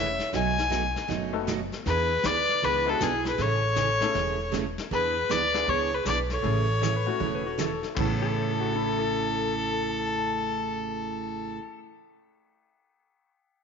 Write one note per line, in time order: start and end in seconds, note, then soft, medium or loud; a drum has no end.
0.00 0.18 E1 medium
0.00 0.16 A3 medium
0.00 0.17 C#4 medium
0.00 0.17 E4 medium
0.00 0.17 G#4 medium
0.00 0.17 B4 medium
0.00 0.31 C#5 medium
0.00 0.31 E5 loud
0.19 snare soft
0.33 0.94 B1 loud
0.33 0.55 B2 medium
0.33 0.55 F#3 medium
0.33 0.55 A3 medium
0.33 0.55 D#4 medium
0.33 0.55 F#4 medium
0.33 1.06 D#5 medium
0.33 1.07 G#5 loud
0.33 brush sweep medium
0.33 kick soft
0.33 snare soft
0.58 snare soft
0.70 0.82 B2 medium
0.70 0.82 F#3 medium
0.70 0.82 A3 medium
0.70 0.83 D#4 medium
0.70 0.83 F#4 medium
0.70 kick soft
0.70 snare medium
0.70 hi-hat pedal medium
0.96 snare soft
1.08 1.71 F#1 medium
1.08 1.31 B2 medium
1.08 1.31 F#3 medium
1.08 1.31 A3 medium
1.08 1.31 D#4 medium
1.08 1.31 F#4 medium
1.08 brush sweep soft
1.08 kick soft
1.08 snare soft
1.33 1.46 A3 medium
1.33 1.46 B3 medium
1.33 1.46 D#4 medium
1.33 1.46 F#4 medium
1.33 1.46 A4 medium
1.47 1.59 B2 medium
1.47 1.59 F#3 medium
1.47 1.59 A3 medium
1.47 1.59 D#4 medium
1.47 1.60 F#4 medium
1.47 kick soft
1.47 snare medium
1.47 hi-hat pedal medium
1.72 snare soft
1.86 2.17 E2 loud
1.86 2.08 E3 medium
1.86 2.08 B3 medium
1.86 2.08 D4 medium
1.86 2.08 G#4 medium
1.86 2.22 G#4 medium
1.86 2.27 B4 loud
1.86 brush sweep soft
1.86 kick soft
1.86 snare soft
2.23 2.57 D2 medium
2.23 2.36 E3 medium
2.23 2.36 B3 medium
2.23 2.36 D4 medium
2.23 2.36 G#4 medium
2.23 2.64 B4 medium
2.23 2.66 D5 loud
2.23 kick soft
2.23 snare medium
2.23 hi-hat pedal medium
2.49 snare soft
2.62 2.95 C#2 medium
2.62 2.84 E3 medium
2.62 2.85 B3 medium
2.62 2.85 D4 medium
2.62 2.85 G#4 medium
2.62 2.88 G#4 medium
2.62 2.91 B4 loud
2.62 brush sweep medium
2.62 kick soft
2.62 snare soft
2.85 2.99 G#3 medium
2.85 2.99 B3 medium
2.85 2.99 D4 medium
2.85 2.99 E4 medium
2.85 2.99 G#4 medium
2.85 3.04 A4 medium
2.90 3.02 F#4 medium
3.01 3.33 B1 medium
3.01 3.12 E3 medium
3.01 3.12 B3 medium
3.01 3.12 D4 medium
3.01 3.26 E4 medium
3.01 3.13 G#4 medium
3.01 3.26 G#4 medium
3.01 kick soft
3.01 snare medium
3.01 hi-hat pedal medium
3.25 3.40 G#4 medium
3.25 3.43 B4 medium
3.25 snare soft
3.38 4.00 A1 loud
3.38 3.60 C#3 medium
3.38 3.60 E3 medium
3.38 3.60 A3 medium
3.38 3.60 C#4 medium
3.38 3.61 G#4 medium
3.38 4.54 A4 medium
3.38 4.55 C#5 loud
3.38 brush sweep medium
3.38 kick soft
3.38 snare soft
3.75 3.88 C#3 medium
3.75 3.88 E3 medium
3.75 3.88 A3 medium
3.75 3.88 C#4 medium
3.75 3.88 G#4 medium
3.75 kick soft
3.75 snare medium
3.75 hi-hat pedal medium
4.01 4.14 A3 medium
4.01 4.14 C#4 medium
4.01 4.14 E4 medium
4.01 4.14 G#4 medium
4.01 4.14 A4 medium
4.01 snare soft
4.14 4.76 E1 medium
4.14 4.36 C#3 medium
4.14 4.36 E3 medium
4.14 4.37 A3 medium
4.14 4.37 C#4 medium
4.14 4.37 G#4 medium
4.14 brush sweep soft
4.14 kick soft
4.14 snare soft
4.52 4.64 C#3 medium
4.52 4.64 E3 medium
4.52 4.64 A3 medium
4.52 4.65 C#4 medium
4.52 4.64 G#4 medium
4.52 kick soft
4.52 snare medium
4.52 hi-hat pedal medium
4.78 snare soft
4.91 5.22 E2 loud
4.91 5.13 E3 medium
4.91 5.13 B3 medium
4.91 5.13 D4 medium
4.91 5.13 G#4 medium
4.91 5.27 G#4 medium
4.91 5.32 B4 loud
4.91 brush sweep medium
4.91 kick soft
5.29 5.62 D2 medium
5.29 5.41 E3 medium
5.29 5.41 B3 medium
5.29 5.41 D4 medium
5.29 5.41 G#4 medium
5.29 5.68 B4 loud
5.29 5.70 D5 loud
5.29 snare medium
5.29 hi-hat pedal medium
5.53 5.66 B3 medium
5.53 5.66 D4 medium
5.53 5.66 E4 medium
5.53 5.66 G#4 medium
5.53 snare soft
5.67 6.00 C#2 medium
5.67 5.89 E3 medium
5.67 5.90 B3 medium
5.67 5.90 D4 medium
5.67 5.90 G#4 medium
5.67 5.93 G#4 medium
5.67 5.96 C#5 medium
5.67 brush sweep medium
5.67 kick soft
5.94 6.07 G#4 medium
5.94 6.07 B4 medium
6.05 6.38 B1 medium
6.05 6.18 E3 medium
6.05 6.18 B3 medium
6.05 6.18 D4 medium
6.05 6.18 G#4 medium
6.05 6.19 B4 medium
6.05 6.18 D5 medium
6.05 snare medium
6.05 hi-hat pedal medium
6.30 7.80 A4 medium
6.30 7.80 C#5 loud
6.30 snare soft
6.42 7.05 A1 loud
6.42 6.66 C#3 medium
6.42 6.66 E3 medium
6.42 6.65 A3 medium
6.42 6.66 A3 medium
6.42 6.65 C#4 medium
6.42 6.66 C#4 medium
6.42 6.66 E4 medium
6.42 6.66 G#4 medium
6.42 brush sweep medium
6.42 kick soft
6.82 6.94 C#3 medium
6.82 6.94 E3 medium
6.82 6.94 A3 medium
6.82 6.94 C#4 medium
6.82 6.94 G#4 medium
6.82 6.94 C#5 medium
6.82 snare medium
6.82 hi-hat pedal medium
6.96 7.08 B4 medium
7.06 7.56 A3 medium
7.06 7.56 C#4 medium
7.06 7.56 E4 medium
7.06 7.56 F#4 medium
7.06 7.20 F#4 medium
7.20 7.82 E1 medium
7.20 7.42 C#3 medium
7.20 7.42 E3 medium
7.20 7.42 A3 medium
7.20 7.42 C#4 medium
7.20 7.43 G#4 medium
7.20 7.33 C#5 medium
7.20 brush sweep medium
7.20 kick soft
7.35 7.46 B4 medium
7.47 7.59 F#4 medium
7.58 7.70 C#3 medium
7.58 7.70 E3 medium
7.58 7.70 A3 medium
7.58 7.70 C#4 medium
7.58 7.70 G#4 medium
7.58 7.90 A4 medium
7.58 snare medium
7.58 hi-hat pedal medium
7.83 snare soft
7.95 11.54 A1 medium
7.95 11.56 A2 medium
7.95 11.59 A2 medium
7.95 11.59 C#3 medium
7.95 11.60 E3 medium
7.95 11.57 A3 medium
7.95 11.58 B3 medium
7.95 11.59 C#4 medium
7.95 11.55 E4 medium
7.95 11.55 A4 medium
7.95 11.60 A4 medium
7.95 kick loud
7.95 floor tom loud
7.95 ride bell medium
7.99 11.61 A3 medium
7.99 11.61 C#4 medium
8.22 8.59 A4 medium
8.60 8.73 F#4 medium
8.76 8.98 E4 medium
8.99 11.79 A4 medium